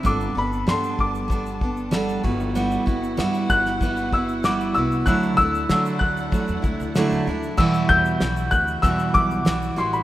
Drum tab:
CC |--------------x-|----------------|----------------|x---------------|
SH |xx-xxx-xxx-xxx-x|xxxxxxxxxx-xxxxx|xxxxxx-xxxxxxx-x|-x-xxxxxxxxxxxxx|
SD |----o-------o---|----o--o----o---|----o-------o---|----o-------o---|
BD |o-----o-o-o---o-|--o---o-o-o-----|o-o---o-o-o-----|o-o---o-o-o-----|